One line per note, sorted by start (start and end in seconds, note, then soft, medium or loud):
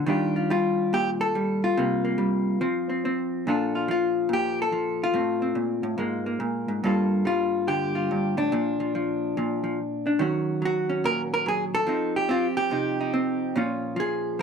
0.06 1.74 D#3 medium
0.06 0.50 G3 soft
0.06 1.75 D4 soft
0.06 0.35 F4 soft
0.06 0.93 G4 soft
0.36 0.50 F4 soft
0.50 1.34 G3 medium
0.50 1.35 F4 medium
0.93 1.75 A#2 medium
0.93 1.09 G4 medium
1.21 1.77 A4 medium
1.35 1.75 G3 medium
1.64 3.47 F4 medium
1.77 2.62 C3 medium
1.77 2.17 G3 soft
1.77 2.03 A#3 soft
2.05 2.61 A#3 soft
2.18 2.59 G3 medium
2.61 3.46 F3 medium
2.61 2.89 C4 soft
2.89 3.05 C4 soft
3.05 3.48 C4 medium
3.47 4.28 A#2 medium
3.47 3.87 F3 soft
3.47 5.14 D4 soft
3.47 3.74 F4 soft
3.47 4.32 A4 soft
3.75 3.89 F4 soft
3.88 4.71 F3 medium
3.88 4.74 F4 medium
4.29 5.12 A#2 medium
4.33 4.59 G4 medium
4.62 5.17 A4 medium
4.72 5.14 F3 medium
5.04 6.84 F4 medium
5.14 5.55 A2 medium
5.14 5.97 A3 soft
5.14 5.41 C4 soft
5.42 5.97 C4 soft
5.55 5.83 A#2 medium
5.83 5.97 A2 medium
5.98 6.39 G#2 medium
5.98 6.82 G#3 soft
5.98 6.26 A#3 soft
6.26 6.85 A#3 soft
6.40 6.68 A#2 medium
6.68 6.83 G#2 medium
6.84 8.10 G2 medium
6.84 7.24 G3 soft
6.84 10.06 A#3 soft
6.84 7.26 F4 soft
6.84 7.68 A4 soft
7.25 8.50 G3 medium
7.25 7.94 F4 medium
7.67 8.50 D3 medium
7.67 8.52 G4 medium
7.95 8.37 F4 soft
8.11 8.37 G2 medium
8.37 8.52 A2 medium
8.37 10.05 D4 medium
8.52 9.36 A#2 medium
8.52 8.79 F3 soft
8.80 8.94 F3 soft
8.95 9.36 F3 medium
9.37 10.19 A#2 medium
9.37 9.62 F3 soft
9.64 9.78 F3 soft
10.07 10.19 D4 soft
10.19 11.85 D#3 medium
10.19 10.61 F#3 soft
10.19 10.89 C#4 soft
10.19 10.63 F#4 soft
10.62 11.45 F#3 medium
10.62 11.47 F#4 medium
10.90 11.87 C#4 medium
11.04 11.86 A#2 medium
11.04 11.21 A#4 loud
11.34 11.47 A#4 medium
11.46 11.86 F#3 medium
11.46 11.64 G#4 medium
11.75 12.15 A4 medium
11.87 13.54 F3 medium
11.87 12.28 C4 soft
11.87 12.30 D#4 soft
12.16 12.56 G4 medium
12.29 13.12 C4 medium
12.29 12.47 F4 medium
12.57 13.55 G4 medium
12.71 13.55 C3 medium
12.71 12.99 D#4 soft
13.01 13.54 D#4 soft
13.14 13.53 C4 medium
13.56 14.42 A#2 medium
13.56 13.95 F3 soft
13.56 14.42 C#4 medium
13.56 13.98 F4 soft
13.96 14.38 F3 medium
13.96 14.42 G#4 medium